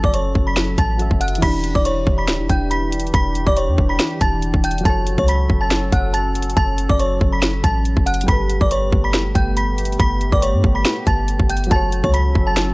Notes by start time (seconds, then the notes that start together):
Already playing: F#3 C#4 F#4 A4 C#5
0.04 F#1 D5 D6, kick
0.14 C#5 C#6, closed hi-hat
0.35 F#1, kick
0.47 B5 B6
0.57 snare, closed hi-hat
0.78 A1 A5 A6, kick, closed hi-hat
0.97 F#3 F#4 A4, closed hi-hat
1.02 E5
1.11 F#1, kick
1.21 F#5 F#6, closed hi-hat, open hi-hat
1.28 closed hi-hat
1.35 E3, closed hi-hat
1.41 E1 E3 D4 E4 G4 B5 B6, kick, closed hi-hat, crash
1.47 D4
1.64 closed hi-hat
1.75 E1 D5 D6, kick
1.85 C#5 C#6, closed hi-hat
2.07 E1, kick
2.18 B5 B6
2.28 D1, snare, closed hi-hat
2.39 E1
2.49 E1 G5 G6, kick, closed hi-hat
2.71 B5 B6, closed hi-hat
2.92 closed hi-hat
3.00 closed hi-hat
3.07 closed hi-hat
3.14 E1 B5 B6, kick, closed hi-hat
3.35 closed hi-hat
3.47 E1 D5 D6, kick
3.57 C#5 C#6, closed hi-hat
3.68 E2
3.78 E1, kick
3.89 B5 B6
4.00 snare, closed hi-hat
4.21 E1 A5 A6, kick, closed hi-hat
4.42 closed hi-hat
4.54 E1, kick
4.64 G5 G6, closed hi-hat, open hi-hat
4.71 closed hi-hat
4.78 F#3, closed hi-hat
4.84 F#1 F#3 C#4 F#4 A4 A5 A6, kick, closed hi-hat
4.89 C#5
5.07 closed hi-hat
5.18 C#2 C#5 C#6, kick
5.28 B5 B6, closed hi-hat
5.50 F#1, kick
5.61 A5 A6
5.71 snare, closed hi-hat
5.92 F#1 F#5 F#6, kick, closed hi-hat
6.14 A5 A6, closed hi-hat
6.35 closed hi-hat
6.42 closed hi-hat
6.50 closed hi-hat
6.57 F#1 A5 A6, kick, closed hi-hat
6.78 closed hi-hat
6.89 F#1 D5 D6, kick
7.00 C#5 C#6, closed hi-hat
7.21 F#1, kick
7.32 B5 B6
7.42 snare, closed hi-hat
7.64 A1 A5 A6, kick, closed hi-hat
7.85 closed hi-hat
7.97 F#1, kick
8.06 F#5 F#6, closed hi-hat, open hi-hat
8.14 closed hi-hat
8.21 G3, closed hi-hat
8.27 G1 A3 B3 G4 A4 B5 B6, kick, closed hi-hat
8.32 B4
8.49 closed hi-hat
8.61 G1 D5 D6, kick
8.71 C#5 C#6, closed hi-hat
8.92 G1, kick
9.04 B5 B6
9.14 F#1, snare, closed hi-hat
9.25 G1
9.35 G1 G5 G6, kick, closed hi-hat
9.57 B5 B6, closed hi-hat
9.78 closed hi-hat
9.85 closed hi-hat
9.92 closed hi-hat
10.00 G1 B5 B6, kick, closed hi-hat
10.21 closed hi-hat
10.32 G1 D5 D6, kick
10.42 C#5 C#6, closed hi-hat
10.54 G2
10.64 G1, kick
10.75 B5 B6
10.85 snare, closed hi-hat
11.07 G1 A5 A6, kick, closed hi-hat
11.28 closed hi-hat
11.40 G1, kick
11.49 G5 G6, closed hi-hat, open hi-hat
11.57 closed hi-hat
11.64 F#3, closed hi-hat
11.70 F#1 F#3 C#4 F#4 A4 A5 A6, kick, closed hi-hat
11.76 C#5
11.92 closed hi-hat
12.04 C#2 C#5 C#6, kick
12.14 B5 B6, closed hi-hat
12.35 F#1, kick
12.47 A5 A6
12.57 snare, closed hi-hat